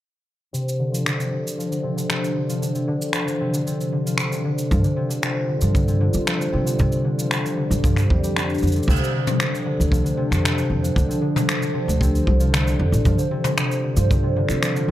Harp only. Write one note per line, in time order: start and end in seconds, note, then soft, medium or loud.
0.53 0.85 C3 medium
0.79 1.04 D3 medium
0.92 1.11 F3 medium
1.05 1.24 D3 medium
1.18 1.37 C3 medium
1.31 1.70 D3 medium
1.57 1.76 F3 medium
1.71 1.89 D3 medium
1.83 2.02 C3 medium
1.96 2.15 D3 medium
2.09 2.41 C3 medium
2.36 2.60 D3 medium
2.49 2.67 F3 medium
2.62 2.80 D3 medium
2.75 2.93 C3 medium
2.88 3.26 D3 medium
3.14 3.32 F3 medium
3.27 3.45 D3 medium
3.41 3.58 C3 medium
3.54 3.72 D3 medium
3.67 3.98 C3 medium
3.92 4.17 D3 medium
4.06 4.24 F3 medium
4.18 4.37 D3 medium
4.32 4.50 C3 medium
4.45 4.76 D3 medium
4.71 4.89 F3 medium
4.84 5.02 D3 medium
4.96 5.15 C3 medium
5.09 5.28 D3 medium
5.22 5.54 C3 medium
5.48 5.73 D3 medium
5.61 5.80 F3 medium
5.74 5.93 D3 medium
5.88 6.06 C3 medium
6.01 6.39 D3 medium
6.27 6.45 F3 medium
6.40 6.58 D3 medium
6.53 6.72 C3 medium
6.66 6.85 D3 medium
6.79 7.11 C3 loud
7.04 7.30 D3 medium
7.18 7.37 F3 medium
7.31 7.50 D3 medium
7.44 7.63 C3 medium
7.57 7.95 D3 medium
7.84 8.02 F3 medium
7.96 8.61 D3 medium
8.10 8.22 G3 medium
8.23 8.67 G3 medium
8.36 11.16 D4 medium
8.62 8.80 D3 medium
8.75 8.87 C3 medium
8.88 9.19 C3 loud
9.14 9.38 D3 medium
9.27 9.45 F3 medium
9.40 9.59 D3 medium
9.52 9.72 C3 medium
9.65 10.03 D3 medium
9.91 10.11 F3 medium
10.04 10.24 D3 medium
10.17 10.37 C3 medium
10.30 10.50 D3 medium
10.43 10.76 C3 medium
10.69 10.94 D3 medium
10.82 11.02 F3 medium
10.95 11.15 D3 medium
11.08 11.28 C3 medium
11.21 11.60 D3 medium
11.47 11.67 F3 medium
11.61 11.80 D3 medium
11.74 11.93 C3 medium
11.87 12.06 D3 medium
12.00 12.32 C3 medium
12.26 12.51 D3 medium
12.40 12.59 F3 medium
12.53 12.72 D3 medium
12.66 12.85 C3 medium
12.79 13.11 D3 medium
13.05 13.24 F3 medium
13.18 13.37 D3 medium
13.31 13.50 C3 loud
13.44 13.63 D3 medium
13.57 13.89 C3 loud
13.83 14.09 D3 medium
13.96 14.15 F3 medium
14.10 14.28 D3 medium
14.23 14.41 C3 medium
14.36 14.74 D3 medium
14.62 14.80 F3 medium
14.75 14.91 D3 medium